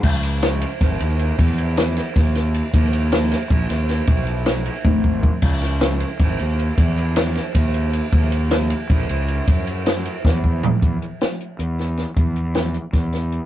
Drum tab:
CC |x------|-------|-------|-------|
RD |-xxxxxx|xxxxxxx|xxxxxxx|xxxx---|
HH |-------|-------|-------|-------|
SD |--o-o--|--oooo-|--oo-oo|--o----|
T1 |-------|-------|-------|----o--|
FT |-------|-------|-------|-------|
BD |o---o--|o---o--|o---o--|o---ooo|

CC |x------|-------|-------|-------|
RD |-xxxxxx|xxxxxxx|xxxxxxx|xxxx---|
HH |-------|-------|-------|-------|
SD |-oo----|--oo---|--o----|--o-o--|
T1 |-------|-------|-------|-------|
FT |-------|-------|-------|------o|
BD |o---o--|o---o--|o---o--|o---oo-|

CC |-------|-------|
RD |-------|-------|
HH |xxxxxxx|xxxxxxx|
SD |--o--oo|--o-oo-|
T1 |-------|-------|
FT |-------|-------|
BD |o------|o---o--|